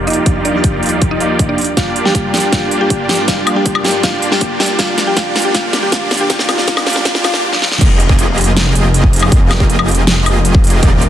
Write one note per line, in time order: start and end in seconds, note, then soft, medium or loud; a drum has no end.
0.00 1.56 D#2 medium
0.00 0.25 F3 medium
0.00 1.56 G3 medium
0.00 0.24 A#3 medium
0.00 0.26 A#3 medium
0.00 0.26 D4 medium
0.00 0.24 D#4 medium
0.00 0.27 D#4 medium
0.00 0.24 F4 medium
0.00 1.56 F4 medium
0.00 0.24 G4 medium
0.00 0.27 G4 loud
0.00 0.24 D5 medium
0.07 0.27 D#4 medium
0.07 0.27 D#5 medium
0.07 closed hi-hat soft
0.10 closed hi-hat medium
0.13 closed hi-hat medium
0.25 0.52 F3 medium
0.25 0.52 A#3 medium
0.25 1.18 A#3 medium
0.25 0.52 D4 medium
0.25 1.18 D#4 medium
0.25 0.53 D#4 medium
0.25 1.18 F4 medium
0.25 1.18 G4 medium
0.25 0.53 G4 medium
0.25 1.18 D5 medium
0.25 kick medium
0.25 closed hi-hat medium
0.45 0.65 D4 medium
0.45 0.65 D5 medium
0.45 closed hi-hat medium
0.53 1.56 F3 medium
0.53 1.57 A#3 medium
0.53 1.58 D#4 medium
0.53 1.57 D5 medium
0.57 1.58 G4 loud
0.64 kick medium
0.64 closed hi-hat medium
0.83 closed hi-hat soft
0.86 closed hi-hat medium
0.89 closed hi-hat medium
1.02 kick medium
1.02 closed hi-hat medium
1.11 1.30 D#4 medium
1.11 1.31 D#5 medium
1.20 1.57 A#3 medium
1.20 1.57 D#4 medium
1.20 1.57 F4 medium
1.20 1.57 G4 medium
1.20 1.57 D5 medium
1.20 closed hi-hat medium
1.39 kick medium
1.39 closed hi-hat medium
1.49 1.63 D4 medium
1.49 1.63 D5 medium
1.58 4.76 G2 medium
1.58 4.76 F3 medium
1.58 7.77 A#3 medium
1.58 closed hi-hat soft
1.61 closed hi-hat medium
1.64 closed hi-hat medium
1.76 2.02 G3 medium
1.76 2.03 A#3 medium
1.76 2.51 A#3 medium
1.76 2.51 D4 medium
1.76 2.03 D4 medium
1.76 2.51 F4 medium
1.76 1.92 F4 medium
1.76 2.04 F4 medium
1.76 2.51 G4 medium
1.76 2.04 G4 medium
1.76 2.51 D5 medium
1.76 1.92 F5 medium
1.76 kick loud
1.76 snare soft
1.76 closed hi-hat medium
1.76 riser medium
1.96 closed hi-hat medium
2.03 2.50 G3 medium
2.03 2.51 A#3 medium
2.03 2.51 D4 medium
2.03 2.52 F4 medium
2.03 2.20 G4 medium
2.03 2.52 G4 medium
2.03 2.20 G5 medium
2.03 snare soft
2.15 kick medium
2.15 closed hi-hat medium
2.34 2.48 G4 medium
2.34 2.48 G5 medium
2.34 snare soft
2.34 closed hi-hat soft
2.37 closed hi-hat medium
2.40 closed hi-hat medium
2.51 2.78 G3 medium
2.51 2.78 A#3 medium
2.51 3.27 A#3 medium
2.51 2.79 D4 medium
2.51 3.27 D4 medium
2.51 2.67 F4 medium
2.51 3.27 F4 medium
2.51 2.79 F4 medium
2.51 3.27 G4 medium
2.51 2.79 G4 medium
2.51 3.27 D5 medium
2.51 2.67 F5 medium
2.51 kick loud
2.51 snare soft
2.51 closed hi-hat medium
2.71 closed hi-hat medium
2.79 3.26 G3 medium
2.79 3.26 A#3 medium
2.79 3.27 D4 medium
2.79 3.27 F4 medium
2.79 2.96 G4 medium
2.79 3.28 G4 medium
2.79 2.95 G5 medium
2.90 kick loud
2.90 closed hi-hat medium
3.09 3.24 G4 medium
3.09 3.24 G5 medium
3.09 snare medium
3.09 closed hi-hat soft
3.12 closed hi-hat medium
3.15 closed hi-hat medium
3.27 3.53 G3 medium
3.27 3.54 A#3 medium
3.27 4.02 A#3 medium
3.27 3.54 D4 medium
3.27 4.02 D4 medium
3.27 4.02 F4 medium
3.27 3.43 F4 medium
3.27 3.54 F4 medium
3.27 4.02 G4 medium
3.27 3.55 G4 medium
3.27 4.02 D5 medium
3.27 3.43 F5 medium
3.27 kick medium
3.27 snare medium
3.27 closed hi-hat medium
3.47 closed hi-hat medium
3.47 high woodblock medium
3.54 4.01 G3 medium
3.54 4.02 A#3 medium
3.54 4.02 D4 medium
3.54 4.03 F4 medium
3.54 3.71 G4 medium
3.54 4.03 G4 loud
3.54 3.71 G5 medium
3.66 kick medium
3.66 closed hi-hat medium
3.75 high woodblock medium
3.85 3.99 G4 medium
3.85 3.99 G5 medium
3.85 snare medium
3.85 closed hi-hat soft
3.88 closed hi-hat medium
3.91 closed hi-hat medium
4.02 4.28 G3 medium
4.02 4.29 A#3 medium
4.02 4.78 A#3 medium
4.02 4.30 D4 medium
4.02 4.78 D4 medium
4.02 4.78 F4 medium
4.02 4.18 F4 medium
4.02 4.30 F4 medium
4.02 4.78 G4 medium
4.02 4.30 G4 medium
4.02 4.78 D5 medium
4.02 4.18 F5 medium
4.02 kick loud
4.02 snare medium
4.02 closed hi-hat medium
4.22 closed hi-hat medium
4.30 4.76 G3 medium
4.30 4.77 A#3 medium
4.30 4.77 D4 medium
4.30 4.78 F4 medium
4.30 4.46 G4 medium
4.30 4.46 G5 medium
4.30 snare medium
4.34 4.78 G4 loud
4.41 kick loud
4.41 closed hi-hat medium
4.60 4.75 G4 medium
4.60 4.75 G5 medium
4.60 snare medium
4.60 closed hi-hat soft
4.63 closed hi-hat medium
4.66 closed hi-hat medium
4.78 7.78 C3 medium
4.78 7.78 D#3 medium
4.78 5.04 G3 medium
4.78 5.05 A#3 medium
4.78 5.15 A#3 medium
4.78 5.15 D4 medium
4.78 5.05 D4 medium
4.78 7.78 D4 medium
4.78 4.93 F4 medium
4.78 5.15 F4 medium
4.78 5.05 F4 medium
4.78 5.15 G4 medium
4.78 5.06 G4 medium
4.78 5.15 D5 medium
4.78 4.93 F5 medium
4.78 kick loud
4.78 snare medium
4.78 closed hi-hat medium
4.98 snare medium
4.98 closed hi-hat medium
5.05 5.14 G3 medium
5.05 5.15 A#3 medium
5.05 5.15 D4 medium
5.05 5.16 F4 medium
5.05 5.15 G4 medium
5.05 5.15 G5 medium
5.09 5.16 G4 loud
5.16 5.42 G3 medium
5.16 5.43 A#3 medium
5.16 5.53 A#3 medium
5.16 5.53 D4 medium
5.16 5.31 F4 medium
5.16 5.53 F4 medium
5.16 5.43 F4 medium
5.16 5.53 G4 medium
5.16 5.43 G4 medium
5.16 5.53 D5 medium
5.16 5.31 F5 loud
5.16 kick loud
5.16 snare medium
5.16 closed hi-hat medium
5.36 snare medium
5.36 closed hi-hat soft
5.39 closed hi-hat medium
5.42 5.52 G3 medium
5.42 5.53 A#3 medium
5.42 5.53 D4 medium
5.42 5.53 G4 medium
5.42 5.53 G5 medium
5.42 closed hi-hat medium
5.46 5.54 F4 medium
5.46 5.54 G4 loud
5.54 5.80 G3 medium
5.54 5.81 A#3 medium
5.54 5.91 A#3 medium
5.54 5.91 D4 medium
5.54 5.81 D4 medium
5.54 5.91 F4 medium
5.54 5.69 F4 medium
5.54 5.81 F4 medium
5.54 5.91 G4 medium
5.54 5.91 D5 medium
5.54 5.69 F5 loud
5.54 kick loud
5.54 snare medium
5.54 closed hi-hat medium
5.73 snare medium
5.73 closed hi-hat medium
5.81 5.90 G3 medium
5.81 5.90 A#3 medium
5.81 5.91 D4 medium
5.81 5.91 F4 medium
5.81 5.91 G4 medium
5.81 5.91 G5 medium
5.85 5.92 G4 loud
5.92 6.28 A#3 medium
5.92 6.28 D4 medium
5.92 6.18 D4 medium
5.92 6.07 F4 medium
5.92 6.28 F4 medium
5.92 6.28 G4 medium
5.92 6.29 D5 loud
5.92 6.07 F5 loud
5.92 kick medium
5.92 snare medium
5.92 closed hi-hat medium
6.11 snare medium
6.11 closed hi-hat medium
6.14 closed hi-hat medium
6.17 6.28 G3 medium
6.17 6.28 A#3 medium
6.17 6.29 D4 medium
6.17 6.29 G4 medium
6.17 6.29 G5 medium
6.17 closed hi-hat medium
6.22 6.29 F4 medium
6.22 6.30 G4 loud
6.29 6.47 G3 medium
6.29 6.47 A#3 medium
6.29 6.47 D4 medium
6.29 6.48 D4 medium
6.29 6.47 F4 medium
6.29 6.45 F4 medium
6.29 6.48 F4 medium
6.29 6.47 G4 medium
6.29 6.48 G4 medium
6.29 6.47 D5 medium
6.29 6.45 F5 loud
6.29 kick loud
6.29 snare medium
6.29 closed hi-hat medium
6.39 snare medium
6.48 6.66 G3 medium
6.48 6.66 A#3 medium
6.48 6.66 D4 medium
6.48 6.66 F4 medium
6.48 6.64 F4 medium
6.48 6.67 F4 medium
6.48 6.66 G4 medium
6.48 6.67 G4 medium
6.48 6.66 D5 loud
6.48 6.64 F5 loud
6.48 snare medium
6.48 closed hi-hat medium
6.48 high woodblock medium
6.58 snare medium
6.67 6.85 G3 medium
6.67 6.85 A#3 medium
6.67 6.85 D4 medium
6.67 6.85 F4 medium
6.67 6.82 F4 medium
6.67 6.86 F4 medium
6.67 6.85 G4 medium
6.67 6.86 G4 medium
6.67 6.85 D5 medium
6.67 6.82 F5 loud
6.67 kick loud
6.67 snare medium
6.67 closed hi-hat medium
6.77 snare medium
6.77 high woodblock medium
6.86 7.03 G3 medium
6.86 7.04 A#3 medium
6.86 7.04 D4 medium
6.86 7.04 F4 medium
6.86 7.01 F4 medium
6.86 7.04 F4 medium
6.86 7.04 G4 medium
6.86 7.05 G4 medium
6.86 7.04 D5 loud
6.86 7.01 F5 loud
6.86 snare loud
6.86 closed hi-hat medium
6.90 closed hi-hat medium
6.93 snare medium
6.93 closed hi-hat medium
7.05 7.22 G3 medium
7.05 7.23 A#3 medium
7.05 7.23 D4 medium
7.05 7.23 F4 medium
7.05 7.20 F4 medium
7.05 7.23 F4 medium
7.05 7.23 G4 medium
7.05 7.23 D5 medium
7.05 7.20 F5 loud
7.05 kick loud
7.05 snare loud
7.05 closed hi-hat medium
7.05 swell medium
7.15 snare medium
7.23 7.41 G3 medium
7.23 7.42 A#3 medium
7.23 7.42 D4 medium
7.23 7.42 F4 medium
7.23 7.39 F4 medium
7.23 7.42 F4 medium
7.23 7.42 G4 medium
7.23 7.42 D5 loud
7.23 7.39 F5 loud
7.23 snare loud
7.23 closed hi-hat medium
7.23 high woodblock medium
7.34 snare medium
7.53 snare medium
7.62 snare medium
7.72 snare medium
7.81 8.73 F1 loud
7.81 10.80 F3 medium
7.81 10.80 G#3 medium
7.81 8.73 A#3 medium
7.81 10.80 D#4 medium
7.81 8.73 F4 medium
7.81 8.73 G4 medium
7.81 8.73 G#4 medium
7.81 10.80 A#4 medium
7.81 8.73 D#5 medium
7.81 11.09 G5 medium
7.81 kick loud
7.81 closed hi-hat medium
7.81 crash loud
8.00 closed hi-hat medium
8.09 kick loud
8.19 closed hi-hat medium
8.38 closed hi-hat medium
8.41 closed hi-hat medium
8.44 closed hi-hat medium
8.57 snare loud
8.57 closed hi-hat medium
8.75 9.30 F1 medium
8.75 9.30 A#3 medium
8.75 9.30 F4 medium
8.75 9.30 G4 medium
8.75 9.30 G#4 medium
8.75 9.30 D#5 medium
8.75 closed hi-hat medium
8.94 closed hi-hat medium
9.04 kick medium
9.13 closed hi-hat medium
9.16 closed hi-hat medium
9.19 closed hi-hat medium
9.19 high woodblock medium
9.32 10.24 F1 medium
9.32 10.24 A#3 medium
9.32 10.24 F4 medium
9.32 10.24 G4 medium
9.32 10.24 G#4 medium
9.32 10.24 D#5 medium
9.32 kick loud
9.32 closed hi-hat medium
9.51 snare medium
9.51 closed hi-hat medium
9.51 high woodblock medium
9.60 kick loud
9.70 closed hi-hat medium
9.79 high woodblock medium
9.88 closed hi-hat soft
9.91 closed hi-hat medium
9.95 closed hi-hat medium
10.07 snare loud
10.07 closed hi-hat medium
10.26 10.84 F1 loud
10.26 10.81 A#3 medium
10.26 10.81 F4 medium
10.26 10.81 G4 medium
10.26 10.81 G#4 medium
10.26 10.81 D#5 medium
10.26 closed hi-hat medium
10.26 high woodblock medium
10.45 closed hi-hat medium
10.55 kick loud
10.64 closed hi-hat medium
10.67 closed hi-hat medium
10.70 closed hi-hat medium
10.83 11.09 D#1 medium
10.83 11.09 A#3 medium
10.83 11.09 D#4 medium
10.83 11.09 F4 medium
10.83 11.09 G4 medium
10.83 11.09 D5 loud
10.83 kick loud
10.83 closed hi-hat medium
11.02 closed hi-hat medium